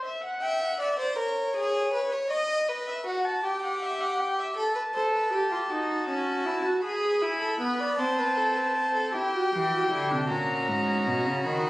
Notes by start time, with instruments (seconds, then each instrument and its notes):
0.05 violin E5
0.24 violin F#5
0.42 violin E5 G5
0.60 violin F#5
0.80 violin D5 E5
0.98 violin C5 D5
1.18 violin A#4 C#5
1.56 violin G#4
1.94 violin B4
2.12 violin C#5
2.30 violin D#5
2.68 violin B4
2.88 violin E5
3.06 violin F#4 F#5
3.25 violin A5
3.44 violin G4 G5
3.63 violin F#5
3.83 violin E5
4.01 violin F#5
4.20 violin G5
4.39 violin E5
4.57 violin A4 A5
4.75 violin B4
4.94 viola A4, violin C5
5.13 violin B4
5.32 viola G4, violin A4
5.51 viola F4, violin G4
5.70 viola D#4, violin F#4
6.08 viola C#4
6.46 viola E4
6.65 viola F#4
6.83 violin G#4 B5, viola G#4
7.22 viola E4
7.41 violin A4
7.60 viola B3, violin B4
7.80 violin D5
7.99 viola C4, violin C5 A5
8.18 violin B4
8.37 violin A4
8.56 violin B4
8.75 violin C5
8.94 violin A4
9.13 viola E4, violin G4 G5
9.34 viola F#4
9.53 cello E3, viola G4
9.72 viola F#4
9.91 cello D3, viola E4
10.11 cello C3, viola D4
10.29 cello A#2, viola C#4, violin F#4 A#5
10.68 cello G#2
11.07 cello B2
11.26 cello C#3
11.45 cello D#3, viola D#4, violin B5